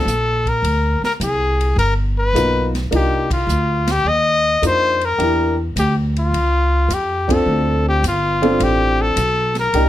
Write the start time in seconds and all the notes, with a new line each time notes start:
Already playing: A4
0.05 A#1, hi-hat pedal
0.46 A#4, kick, ride
0.62 D2, ride
1.01 A#4, muted upright bass stroke, snare
1.20 C2 G#4, hi-hat pedal, ride
1.61 ride
1.76 G1 A#4, ride
2.19 B4
2.33 B1 A#3 B3 D#4 F4, hi-hat pedal, ride
2.75 snare, ride
2.91 C2 A#3 D4 D#4 F4, ride
2.96 G4
3.31 F4, kick, ride
3.47 D2, hi-hat pedal
3.87 snare, ride
3.92 G4
4.04 D#2
4.08 D#5
4.62 F2 A#3 D4 D#4 F4, hi-hat pedal, ride
4.67 C5
5.01 ride
5.05 A#4
5.18 E2 A#3 D4 E4 G4, ride
5.76 D2 G4, hi-hat pedal, ride
6.16 F4, ride
6.31 C#2, ride
6.88 F2, hi-hat pedal, ride
6.94 G4
7.28 C4 D4 F4 A4, kick, ride
7.33 A4
7.46 D2
7.89 G4
8.03 G1, hi-hat pedal, ride
8.08 F4
8.42 C4 D4 F4 A4, ride
8.59 A1, ride
8.64 G4
9.02 A4
9.16 B1, hi-hat pedal, ride
9.55 snare, ride
9.60 A#4
9.73 C2 A#3 D4 D#4 G4, ride